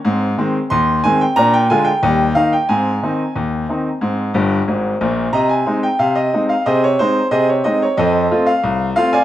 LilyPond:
<<
  \new Staff \with { instrumentName = "Grand piano" } { \time 2/4 \key aes \major \tempo 4 = 91 r4 c'''8 aes''16 g''16 | bes''16 g''16 aes''16 g''8. f''16 g''16 | aes''2~ | aes''4 r4 |
<ees'' bes''>16 aes''8 g''16 f''16 ees''8 f''16 | <aes' c'' ees''>16 des''16 c''8 <aes' c'' ees''>16 des''16 ees''16 des''16 | <a' c'' ees''>8. f''8. f''16 <d'' f'' aes''>16 | }
  \new Staff \with { instrumentName = "Grand piano" } { \clef bass \time 2/4 \key aes \major <aes, c'>8 <ees aes c'>8 ees,8 <ees aes c'>8 | <bes, d'>8 <d aes f'>8 <ees, g>8 <ees bes ees'>8 | <aes, c'>8 <ees c' ees'>8 ees,8 <ees c' ees'>8 | <aes, c'>8 <g,, g,>8 <aes,, aes,>8 <bes,, bes,>8 |
c8 <aes c' ees'>8 c8 <aes c' ees'>8 | c8 <aes c' ees'>8 c8 <aes c' ees'>8 | f,8 <a c' f'>8 c,8 <a c' f'>8 | }
>>